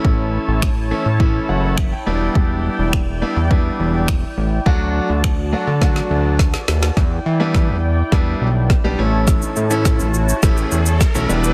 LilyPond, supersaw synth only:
\new Staff \with { instrumentName = "Supersaw synth" } { \time 4/4 \key e \dorian \tempo 4 = 104 << { <cis'' a''>2.~ <cis'' a''>8 <d'' g''>8~ | <d'' g''>1 | <d'' a''>1 | <d'' g''>2.~ <d'' g''>8 <cis'' a''>8~ |
<cis'' a''>2.~ <cis'' a''>8 <d'' g''>8 | } \\ { e'1~ | e'1 | fis'1 | e'1~ |
e'1 | } >> }